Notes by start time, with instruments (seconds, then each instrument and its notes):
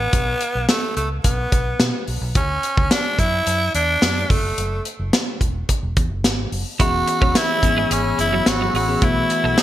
Already playing: tenor saxophone B3
0.13 fingered electric bass B1, kick, closed hi-hat
0.41 closed hi-hat
0.55 fingered electric bass B1
0.68 tenor saxophone A3, snare, closed hi-hat
0.96 fingered electric bass C#2, tenor saxophone A3, closed hi-hat
1.24 fingered electric bass B1, tenor saxophone B3, kick, closed hi-hat
1.52 fingered electric bass B1, kick, closed hi-hat
1.80 fingered electric bass B2, snare, closed hi-hat
2.08 fingered electric bass B1, open hi-hat
2.21 fingered electric bass B1
2.35 fingered electric bass D2, tenor saxophone C#4, kick, closed hi-hat
2.63 closed hi-hat
2.77 fingered electric bass D2, kick
2.91 tenor saxophone D4, snare, closed hi-hat
3.19 fingered electric bass F#2, tenor saxophone E4, kick, closed hi-hat
3.47 fingered electric bass F#2, closed hi-hat
3.75 fingered electric bass E2, tenor saxophone D4, closed hi-hat
4.02 fingered electric bass F#2, snare, closed hi-hat
4.30 fingered electric bass F#1, tenor saxophone A3, kick, open hi-hat
4.58 fingered electric bass F#1, closed hi-hat
4.85 closed hi-hat
4.99 fingered electric bass F#1
5.13 snare, closed hi-hat
5.41 fingered electric bass E1, kick, closed hi-hat
5.69 kick, closed hi-hat
5.83 fingered electric bass E1
5.97 fingered electric bass E2, kick, closed hi-hat
6.10 fingered electric bass F#1
6.24 fingered electric bass G#1, snare, closed hi-hat
6.52 fingered electric bass F#1, open hi-hat
6.79 fingered electric bass E1, tine electric piano E3 B3 C#4 G#4, clean electric guitar E4, tenor saxophone F#4, ambient pad G#4 C#5 B5 E6, kick, closed hi-hat
7.07 muted clean electric guitar stroke, closed hi-hat
7.21 fingered electric bass E1, clean electric guitar C#4, kick
7.35 clean electric guitar B3, tenor saxophone E4, snare, closed hi-hat
7.62 fingered electric bass G#1, tine electric piano E3 B3 C#4 G#4, muted clean electric guitar stroke, kick, closed hi-hat
7.77 clean electric guitar G#3
7.91 fingered electric bass G#1, clean electric guitar G#3, tenor saxophone C#4, closed hi-hat
8.18 fingered electric bass F#1, tenor saxophone E4, muted clean electric guitar stroke, closed hi-hat
8.33 clean electric guitar F#3
8.46 fingered electric bass G#1, tenor saxophone F#4, muted clean electric guitar stroke, snare, closed hi-hat
8.61 clean electric guitar F#3
8.74 fingered electric bass A1, clean electric guitar G#3, tenor saxophone F#4, open hi-hat
8.88 tine electric piano E3 B3 C#4 G#4
9.01 fingered electric bass B1, tine electric piano E3 A3 B3 F#4, clean electric guitar B3, tenor saxophone E4, ambient pad A4 F#5 B5 E6, kick, closed hi-hat
9.30 muted clean electric guitar stroke, closed hi-hat
9.44 fingered electric bass B1, clean electric guitar A3
9.58 clean electric guitar A3, tenor saxophone D#4, snare, closed hi-hat